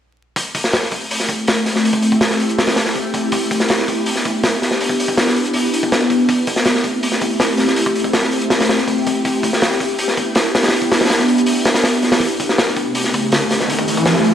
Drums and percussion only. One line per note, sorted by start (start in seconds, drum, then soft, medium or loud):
0.36 kick medium
0.36 open hi-hat medium
0.55 kick medium
0.55 open hi-hat medium
0.64 snare soft
0.73 snare loud
0.73 open hi-hat medium
0.83 snare soft
0.91 kick medium
0.91 open hi-hat medium
1.11 open hi-hat medium
1.20 snare soft
1.29 kick medium
1.29 open hi-hat medium
1.48 snare loud
1.48 open hi-hat medium
1.66 snare soft
1.66 open hi-hat medium
1.76 snare soft
1.85 open hi-hat medium
1.93 kick medium
2.02 open hi-hat medium
2.12 kick medium
2.21 snare loud
2.21 open hi-hat medium
2.31 snare soft
2.40 open hi-hat medium
2.49 closed hi-hat soft
2.58 snare medium
2.58 open hi-hat medium
2.67 snare medium
2.67 open hi-hat medium
2.76 snare medium
2.76 open hi-hat medium
2.86 snare soft
2.95 kick medium
2.95 open hi-hat medium
3.14 kick medium
3.14 open hi-hat medium
3.32 kick loud
3.32 open hi-hat medium
3.51 kick medium
3.51 open hi-hat medium
3.60 snare soft
3.69 snare loud
3.69 open hi-hat medium
3.79 snare soft
3.88 kick medium
3.88 open hi-hat medium
4.06 open hi-hat medium
4.16 snare soft
4.25 kick medium
4.25 open hi-hat medium
4.43 snare loud
4.43 open hi-hat medium
4.62 snare soft
4.62 open hi-hat medium
4.71 snare soft
4.81 open hi-hat medium
4.89 kick medium
5.00 open hi-hat medium
5.08 kick medium
5.17 snare loud
5.17 open hi-hat medium
5.27 snare soft
5.36 open hi-hat medium
5.45 closed hi-hat soft
5.53 open hi-hat medium
5.74 open hi-hat medium
5.83 kick medium
5.92 snare medium
5.92 open hi-hat medium
6.01 snare soft
6.10 kick medium
6.10 open hi-hat medium
6.29 kick loud
6.29 open hi-hat medium
6.47 kick medium
6.47 open hi-hat medium
6.56 snare soft
6.65 snare loud
6.65 open hi-hat medium
6.75 snare soft
6.84 kick medium
6.84 open hi-hat medium
7.03 open hi-hat medium
7.12 snare soft
7.21 kick medium
7.21 open hi-hat medium
7.40 snare loud
7.40 open hi-hat medium
7.57 snare soft
7.57 open hi-hat medium
7.68 snare soft
7.76 open hi-hat medium
7.86 kick medium
7.95 open hi-hat medium
8.04 kick medium
8.13 snare loud
8.13 open hi-hat medium
8.23 snare soft
8.32 open hi-hat medium
8.41 closed hi-hat soft
8.50 snare loud
8.50 open hi-hat medium
8.60 snare medium
8.60 open hi-hat medium
8.69 snare loud
8.69 open hi-hat medium
8.78 snare soft
8.88 kick medium
8.88 open hi-hat medium
9.06 kick medium
9.06 open hi-hat medium
9.25 kick loud
9.25 open hi-hat medium
9.43 kick medium
9.43 open hi-hat medium
9.53 snare soft
9.61 snare loud
9.61 open hi-hat medium
9.72 snare soft
9.80 kick medium
9.80 open hi-hat medium
9.98 open hi-hat medium
10.08 snare soft
10.17 kick medium
10.17 open hi-hat medium
10.35 snare loud
10.35 open hi-hat medium
10.55 snare medium
10.55 open hi-hat medium
10.63 snare medium
10.63 open hi-hat medium
10.68 snare medium
10.68 open hi-hat medium
10.73 open hi-hat medium
10.82 kick loud
10.92 snare loud
10.92 open hi-hat medium
11.00 snare medium
11.00 open hi-hat medium
11.05 snare medium
11.05 open hi-hat medium
11.10 snare loud
11.10 open hi-hat medium
11.19 snare medium
11.28 open hi-hat medium
11.38 closed hi-hat soft
11.46 open hi-hat medium
11.65 snare loud
11.65 open hi-hat medium
11.74 snare medium
11.74 open hi-hat medium
11.84 snare medium
11.84 open hi-hat medium
12.02 snare soft
12.02 open hi-hat medium
12.12 snare loud
12.12 open hi-hat medium
12.21 kick loud
12.21 open hi-hat medium
12.40 kick medium
12.40 open hi-hat medium
12.49 snare soft
12.58 snare loud
12.58 open hi-hat medium
12.68 snare soft
12.76 kick medium
12.76 open hi-hat medium
12.95 open hi-hat medium
13.04 snare soft
13.14 kick medium
13.14 open hi-hat medium
13.32 snare loud
13.32 open hi-hat medium
13.50 snare soft
13.50 open hi-hat medium
13.60 snare soft
13.70 open hi-hat medium
13.79 kick loud
13.88 open hi-hat medium
13.97 kick medium
14.05 snare loud
14.05 open hi-hat medium
14.16 snare soft
14.24 open hi-hat medium